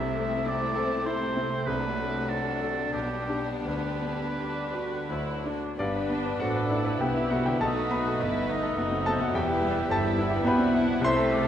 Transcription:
Already playing: grand piano C2, cello section C3, french horn section A3 E4, viola section A3, violin section C4 E4, oboe E5
0.17 grand piano A3
0.46 grand piano C4, oboe D5
0.75 grand piano A4
1.05 grand piano E4, oboe C5
1.37 grand piano C4
1.66 grand piano C2, french horn section F#3 D4, violin section D4 F#4, oboe B4
1.98 grand piano A3
2.29 grand piano D4, oboe A4
2.61 grand piano A4
2.93 grand piano B1, cello section B2, french horn section G3, viola section B3, oboe G4, violin section G4
3.29 grand piano D4 G4
3.64 grand piano D2, cello section D3, oboe B4
4.02 grand piano B3
4.39 grand piano D4, viola section D4
4.73 viola section F#4, grand piano B4
5.10 grand piano D2, french horn section F#3, viola section E4, violin section F#4
5.46 viola section D4, grand piano D4 F#4
5.78 double bass section G1, cello section G2, grand piano G2 D4 D5, bassoon B3, french horn section B3 D4, viola section B3, clarinet D4, violin section D4 B4, flute G4
5.96 grand piano B4
6.09 grand piano B3, viola section D4
6.26 grand piano B4
6.39 double bass section A1, cello section A2, viola section D4, grand piano F#4 C5 F#5, violin section A4, flute A4, oboe D5
6.56 grand piano B4
6.71 grand piano D4, viola section E4
6.85 grand piano B4
7.01 double bass section C2, cello section C3, grand piano B3 G4 G5, french horn section B3 D4, violin section B3 G4, flute B4, oboe E5
7.15 grand piano C4 E4 E5, flute G4
7.30 grand piano B3 F#4 F#5, flute A4
7.45 grand piano D3 G4 G5, flute B4
7.60 grand piano B1 A4 A5, double bass section B1, cello section B2, bassoon A3, french horn section A3 D#4, viola section D#4, clarinet D#4, violin section F#4 B4, oboe D#5, flute D#5
7.76 grand piano A4
7.91 grand piano B3 B4 B5, flute D#5
8.08 grand piano A4
8.20 double bass section G1, cello section G2, viola section B3, violin section E4 B4, oboe B4, grand piano B4
8.34 grand piano A4
8.49 grand piano D#4, violin section D#4, oboe D#5
8.62 grand piano A4
8.78 double bass section F#1, cello section F#2, grand piano B3, violin section D#4 F#4
8.92 grand piano C4
9.06 grand piano B3 A4 A5, flute C5
9.19 grand piano F#2 F#4 F#5, flute A4
9.34 double bass section E1, grand piano E2 G4 G5, cello section E2, french horn section G3 E4, bassoon G3, viola section B3, clarinet E4, violin section E4 G4, flute B4, oboe E5
9.47 grand piano G4
9.62 viola section G3, grand piano B3
9.76 grand piano G4
9.89 double bass section G1, cello section G2, viola section G3, violin section E4 B4, grand piano A4 A5, flute C5
10.03 grand piano G4
10.18 viola section B3, grand piano E4
10.30 grand piano G4
10.44 double bass section B1, cello section B2, french horn section G3 E4, grand piano B3 B4 B5, violin section D4 F#4, flute E5, oboe G5
10.58 grand piano C4
10.74 grand piano B3, violin section E4, oboe F#5
10.87 grand piano B2
11.01 grand piano C2 C6, double bass section C2, cello section C3, french horn section A3 E4, bassoon A3, violin section C4 A4, oboe E5, flute E5
11.05 viola section A3, grand piano C5
11.15 grand piano A4
11.30 grand piano A3, viola section A3, oboe D5
11.43 grand piano A4

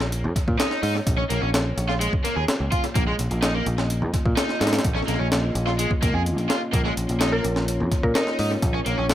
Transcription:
Already playing: picked electric bass A#1, analog synth pad A#3 C#4 F4 C#5
0.01 snare
0.12 closed hi-hat
0.24 picked electric bass F2
0.36 kick, closed hi-hat
0.48 picked electric bass A#2, kick
0.59 overdriven electric guitar D#4, snare, closed hi-hat
0.71 snare
0.83 picked electric bass G#2, overdriven electric guitar D#4, open hi-hat
1.07 picked electric bass A#1, kick, closed hi-hat
1.18 overdriven electric guitar C#4
1.30 picked electric bass A#1, overdriven electric guitar A#3, closed hi-hat
1.42 picked electric bass A#1, overdriven electric guitar C#4
1.54 snare, closed hi-hat
1.77 picked electric bass A#1, closed hi-hat
1.89 overdriven electric guitar F4
2.00 overdriven electric guitar G#3, closed hi-hat
2.13 kick
2.24 overdriven electric guitar A#3, closed hi-hat
2.36 picked electric bass D#2, overdriven electric guitar G#4
2.48 snare, closed hi-hat
2.60 picked electric bass C#2
2.72 overdriven electric guitar F4, kick, closed hi-hat
2.84 closed hi-hat
2.95 picked electric bass A#1, overdriven electric guitar A#3, analog synth pad D#5, kick, closed hi-hat
3.07 overdriven electric guitar G#3
3.19 picked electric bass A#1, closed hi-hat
3.31 picked electric bass A#1, closed hi-hat
3.42 overdriven electric guitar D#4, snare, closed hi-hat
3.54 overdriven electric guitar A#3
3.66 picked electric bass A#1, closed hi-hat
3.78 snare
3.90 closed hi-hat
4.02 picked electric bass F2
4.14 kick, closed hi-hat
4.26 picked electric bass A#2, kick
4.37 overdriven electric guitar D#4, snare, closed hi-hat
4.49 snare
4.60 picked electric bass G#2, overdriven electric guitar D#4, snare, closed hi-hat
4.67 snare, closed hi-hat
4.73 snare, closed hi-hat
4.79 snare, closed hi-hat
4.84 picked electric bass A#1, kick, closed hi-hat
4.96 overdriven electric guitar C#4
5.08 picked electric bass A#1, overdriven electric guitar A#3, closed hi-hat
5.20 picked electric bass A#1, overdriven electric guitar C#4
5.32 snare, closed hi-hat
5.55 picked electric bass A#1, closed hi-hat
5.67 overdriven electric guitar F4
5.78 overdriven electric guitar G#3, closed hi-hat
5.91 kick
6.02 picked electric bass A#1, overdriven electric guitar A#3, kick, closed hi-hat
6.14 picked electric bass F2, overdriven electric guitar G#4
6.26 closed hi-hat
6.38 picked electric bass A#1, closed hi-hat
6.50 overdriven electric guitar F4, snare, closed hi-hat
6.73 picked electric bass A#1, overdriven electric guitar A#3, analog synth pad C#5, kick, closed hi-hat
6.85 overdriven electric guitar G#3
6.97 picked electric bass A#1, closed hi-hat
7.09 picked electric bass A#1, closed hi-hat
7.20 overdriven electric guitar D#4, snare, closed hi-hat
7.32 overdriven electric guitar A#3, synth pluck A#4
7.44 picked electric bass A#1, closed hi-hat
7.56 snare
7.68 closed hi-hat
7.80 picked electric bass F2
7.92 kick, closed hi-hat
8.03 picked electric bass A#2, synth pluck A#4, kick
8.15 overdriven electric guitar D#4, synth pluck A#4, snare, closed hi-hat
8.27 snare
8.39 picked electric bass G#2, overdriven electric guitar D#4, open hi-hat
8.62 picked electric bass A#1, kick, closed hi-hat
8.74 overdriven electric guitar C#4
8.86 picked electric bass A#1, overdriven electric guitar A#3, closed hi-hat
8.98 picked electric bass A#1, overdriven electric guitar C#4
9.10 snare, closed hi-hat

